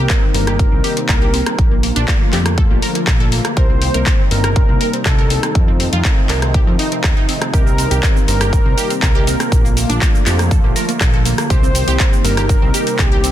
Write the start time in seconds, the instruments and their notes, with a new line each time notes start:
Already playing: analog synth pad C3 D#3 G3 A#3 D#4, analog synth lead A#4
0.10 synth pluck C4, kick, clap, closed hi-hat
0.22 synth pluck C4
0.34 analog synth bass G1, synth pluck C4, analog synth lead A#4, open hi-hat
0.47 synth pluck G4, cross-stick, closed hi-hat
0.59 synth pluck C4, kick, closed hi-hat
0.72 analog synth bass C2, synth pluck C4
0.84 synth pluck G4, open hi-hat
0.97 synth pluck C4, closed hi-hat
1.09 analog synth bass C2, analog synth lead A#4, kick, cross-stick, clap, closed hi-hat
1.22 synth pluck G4
1.34 synth pluck C4, open hi-hat
1.46 synth pluck C4, cross-stick, closed hi-hat
1.59 analog synth bass A#1, analog synth pad D3 F3 A3 A#3 F4, kick, closed hi-hat
1.71 synth pluck A#3
1.83 synth pluck A#3, open hi-hat
1.96 analog synth bass A#1, synth pluck D4, closed hi-hat
2.08 synth pluck A#3, kick, clap, closed hi-hat
2.21 synth pluck A#3
2.33 analog synth bass F2, synth pluck G4, clap, open hi-hat
2.46 synth pluck A#3, cross-stick, closed hi-hat
2.58 synth pluck A4, kick, closed hi-hat
2.71 analog synth bass A#1, synth pluck A#3
2.82 synth pluck A#4, open hi-hat
2.95 synth pluck A#3, closed hi-hat
3.07 analog synth bass A#1, synth pluck A#3, kick, cross-stick, clap, closed hi-hat
3.20 synth pluck A4
3.32 synth pluck A#3, open hi-hat
3.45 synth pluck A#3, cross-stick, closed hi-hat
3.57 analog synth bass C2, analog synth pad C3 D#3 G3 D#4, synth pluck A#4, analog synth lead C5, kick, closed hi-hat
3.70 synth pluck C4
3.82 synth pluck C4, open hi-hat
3.94 analog synth bass C2, synth pluck A#4, closed hi-hat
4.06 synth pluck C4, kick, clap, closed hi-hat
4.19 synth pluck C4
4.31 analog synth bass G1, synth pluck C4, analog synth lead A#4, open hi-hat
4.44 synth pluck A#4, cross-stick, closed hi-hat
4.56 synth pluck C4, kick, closed hi-hat
4.69 analog synth bass C2, synth pluck C4
4.81 synth pluck A#4, open hi-hat
4.93 synth pluck C4, closed hi-hat
5.06 analog synth bass C2, analog synth lead A4, kick, cross-stick, clap, closed hi-hat
5.18 synth pluck A#4
5.30 synth pluck C4, open hi-hat
5.43 synth pluck C4, cross-stick, closed hi-hat
5.55 analog synth bass F2, analog synth pad C3 F3 A3, kick, closed hi-hat
5.68 synth pluck C4
5.80 synth pluck C4, open hi-hat
5.93 analog synth bass F2, synth pluck F4, closed hi-hat
6.05 synth pluck C4, kick, clap, closed hi-hat
6.18 synth pluck C4
6.29 analog synth bass C2, synth pluck A#4, clap, open hi-hat
6.42 synth pluck C4, cross-stick, closed hi-hat
6.54 synth pluck G4, kick, closed hi-hat
6.67 analog synth bass F2, synth pluck C4
6.79 synth pluck D#4, open hi-hat
6.92 synth pluck C4, closed hi-hat
7.04 analog synth bass D#2, kick, cross-stick, clap, closed hi-hat
7.17 synth pluck D#4
7.29 synth pluck C4, open hi-hat
7.41 synth pluck C4, cross-stick, closed hi-hat
7.53 analog synth bass C2, analog synth pad G3 A#3, synth pluck G4, analog synth lead A#4, kick, closed hi-hat, cabasa
7.66 synth pluck C4, cabasa
7.78 synth pluck C4, open hi-hat, cabasa
7.91 analog synth bass C2, synth pluck G4, closed hi-hat, cabasa
8.03 synth pluck C4, kick, clap, closed hi-hat, cabasa
8.16 synth pluck C4, cabasa
8.28 analog synth bass G1, synth pluck C4, analog synth lead A#4, open hi-hat, cabasa
8.41 synth pluck G4, cross-stick, closed hi-hat, cabasa
8.53 synth pluck C4, kick, closed hi-hat, cabasa
8.66 analog synth bass C2, synth pluck C4
8.77 synth pluck G4, open hi-hat, cabasa
8.90 synth pluck C4, closed hi-hat, cabasa
9.02 analog synth bass C2, synth pluck C4, analog synth lead A#4, kick, cross-stick, clap, closed hi-hat, cabasa
9.15 synth pluck G4
9.27 synth pluck C4, open hi-hat, cabasa
9.40 synth pluck C4, cross-stick, closed hi-hat, cabasa
9.52 analog synth bass A#1, analog synth pad D3 F3 A3 F4, kick, closed hi-hat, cabasa
9.65 synth pluck A#3, cabasa
9.77 synth pluck A#3, open hi-hat, cabasa
9.89 analog synth bass A#1, synth pluck D4, closed hi-hat, cabasa
10.01 synth pluck A#3, kick, clap, closed hi-hat, cabasa
10.14 synth pluck A#3, cabasa
10.26 analog synth bass F2, synth pluck G4, clap, open hi-hat, cabasa
10.39 synth pluck A#3, cross-stick, closed hi-hat, cabasa
10.51 synth pluck A4, kick, closed hi-hat, cabasa
10.64 analog synth bass A#1, synth pluck A#3
10.76 synth pluck A#4, open hi-hat, cabasa
10.89 synth pluck A#3, closed hi-hat, cabasa
11.01 analog synth bass A#1, synth pluck A#3, kick, cross-stick, clap, closed hi-hat, cabasa
11.13 synth pluck A4
11.25 synth pluck A#3, open hi-hat, cabasa
11.38 synth pluck A#3, cross-stick, closed hi-hat, cabasa
11.50 analog synth bass C2, analog synth pad C3 D#3 G3 D#4, synth pluck G4, analog synth lead C5, kick, closed hi-hat, cabasa
11.63 synth pluck C4, cabasa
11.75 synth pluck C4, open hi-hat, cabasa
11.88 analog synth bass C2, synth pluck G4, closed hi-hat, cabasa
12.00 synth pluck C4, kick, clap, closed hi-hat, cabasa
12.12 synth pluck C4, cabasa
12.24 analog synth bass G1, synth pluck C4, analog synth lead A#4, open hi-hat, cabasa
12.37 synth pluck G4, cross-stick, closed hi-hat, cabasa
12.49 synth pluck C4, kick, closed hi-hat, cabasa
12.62 analog synth bass C2, synth pluck C4
12.74 synth pluck G4, open hi-hat, cabasa
12.87 synth pluck C4, closed hi-hat, cabasa
12.99 analog synth bass C2, synth pluck C4, analog synth lead G4, kick, cross-stick, clap, closed hi-hat, cabasa
13.12 synth pluck G4
13.24 synth pluck C4, open hi-hat, cabasa